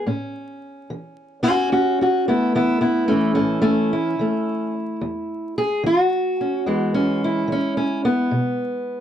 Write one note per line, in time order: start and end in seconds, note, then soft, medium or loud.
0.06 0.83 A2 medium
0.06 1.42 C#4 soft
0.90 1.66 E3 medium
1.43 1.71 C#4 medium
1.43 1.71 F#4 medium
1.72 2.49 E2 medium
1.72 1.99 C#4 medium
1.72 1.99 F#4 medium
2.01 2.27 C#4 medium
2.01 2.28 F#4 medium
2.28 3.07 A3 soft
2.28 2.54 B3 medium
2.28 2.54 E4 medium
2.55 3.10 E3 medium
2.55 2.80 B3 medium
2.55 2.80 E4 medium
2.81 3.08 B3 medium
2.81 3.91 E4 medium
3.08 4.19 E3 soft
3.08 3.34 A3 medium
3.08 3.34 C#4 medium
3.35 3.60 A3 medium
3.35 3.61 C#4 medium
3.39 4.14 A2 medium
3.62 3.90 A3 medium
3.62 4.73 C#4 medium
3.93 5.57 E4 medium
4.19 4.96 E3 medium
4.19 6.63 A3 soft
5.01 5.78 E2 medium
5.58 5.84 G#4 loud
5.83 6.60 E3 medium
5.83 7.22 F#4 medium
6.41 6.63 C#4 medium
6.66 7.43 E2 medium
6.66 7.47 E3 medium
6.66 9.00 G#3 soft
6.66 6.94 B3 soft
6.94 7.49 C#4 medium
7.24 8.32 E4 medium
7.48 8.25 E3 medium
7.52 7.76 C#4 medium
7.77 8.04 C#4 medium
8.05 9.00 B3 medium
8.31 9.00 B2 medium